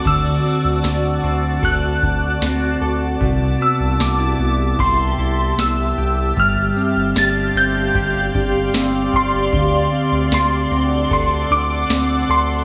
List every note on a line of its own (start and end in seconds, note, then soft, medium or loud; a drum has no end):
0.00 0.45 C4 medium
0.00 0.83 D4 medium
0.00 3.18 F#4 medium
0.00 1.62 A4 medium
0.00 3.17 D5 medium
0.05 0.40 D2 loud
0.05 3.20 D3 medium
0.05 6.33 A5 medium
0.05 1.69 E6 loud
0.05 kick loud
0.05 ride medium
0.45 1.23 C4 medium
0.64 0.82 D2 loud
0.83 1.19 D2 medium
0.83 2.01 D4 medium
0.83 snare loud
0.83 ride medium
0.83 tambourine medium
1.23 1.58 D2 loud
1.23 2.41 C4 medium
1.63 1.98 D2 loud
1.63 2.80 A4 medium
1.63 2.79 F#6 medium
1.63 kick medium
1.63 ride medium
2.02 2.38 D2 medium
2.02 3.29 D4 medium
2.02 kick medium
2.42 2.77 D2 loud
2.42 3.60 C4 medium
2.42 snare loud
2.42 ride medium
2.42 tambourine medium
2.81 3.16 D2 loud
2.81 3.29 A4 medium
3.21 3.56 C2 loud
3.21 6.37 C3 medium
3.21 9.49 G4 medium
3.21 6.34 E5 medium
3.21 kick loud
3.21 ride medium
3.61 4.38 B3 medium
3.61 4.02 E6 medium
3.80 3.98 C2 loud
4.00 4.35 C2 medium
4.00 4.20 D4 medium
4.00 4.82 D6 medium
4.00 snare loud
4.00 ride medium
4.00 tambourine medium
4.20 5.18 E4 medium
4.39 4.74 C2 loud
4.39 5.57 B3 medium
4.79 5.14 C2 loud
4.79 5.97 G4 medium
4.79 5.61 C6 medium
4.79 kick medium
4.79 ride medium
5.18 5.53 C2 loud
5.18 6.45 E4 medium
5.58 5.93 C2 loud
5.58 6.45 B3 medium
5.58 6.40 E6 medium
5.58 snare loud
5.58 ride medium
5.58 tambourine medium
5.98 6.32 C2 loud
5.98 7.95 G4 medium
6.37 6.72 G1 loud
6.37 9.53 G2 medium
6.37 12.64 D5 medium
6.37 9.50 F5 medium
6.37 12.64 C6 medium
6.37 7.20 F6 loud
6.37 kick loud
6.37 ride soft
6.77 7.55 C4 medium
6.96 7.14 G1 loud
7.15 7.51 G1 medium
7.15 8.34 D4 medium
7.15 7.58 A6 medium
7.15 snare loud
7.15 ride medium
7.15 tambourine medium
7.55 7.90 G1 loud
7.55 8.74 C4 medium
7.55 8.31 G6 medium
7.95 8.30 G1 loud
7.95 9.12 G4 medium
7.95 kick medium
7.95 ride medium
8.35 8.70 G1 medium
8.35 9.95 D4 medium
8.35 kick medium
8.74 9.09 G1 medium
8.74 9.92 C4 medium
8.74 snare loud
8.74 ride medium
8.74 tambourine medium
9.13 9.48 G1 loud
9.13 9.61 G4 medium
9.13 10.33 C6 loud
9.13 kick medium
9.53 9.88 D2 loud
9.53 12.64 D3 medium
9.53 12.64 A4 medium
9.53 12.64 F#5 medium
9.53 kick loud
9.53 ride medium
9.92 10.71 C4 medium
10.12 10.30 D2 loud
10.31 10.66 D2 medium
10.31 11.49 D4 medium
10.31 11.12 C6 medium
10.31 snare loud
10.31 ride medium
10.31 tambourine medium
10.71 11.06 D2 loud
10.71 11.90 C4 medium
11.11 11.45 D2 loud
11.11 12.29 A4 medium
11.11 11.49 C6 medium
11.11 kick medium
11.11 ride medium
11.50 11.85 D2 loud
11.50 12.64 D4 medium
11.50 12.32 D6 loud
11.90 12.24 D2 loud
11.90 12.64 C4 medium
11.90 snare loud
11.90 ride medium
11.90 tambourine medium
12.29 12.64 D2 loud
12.29 12.64 A4 medium
12.29 12.64 C6 medium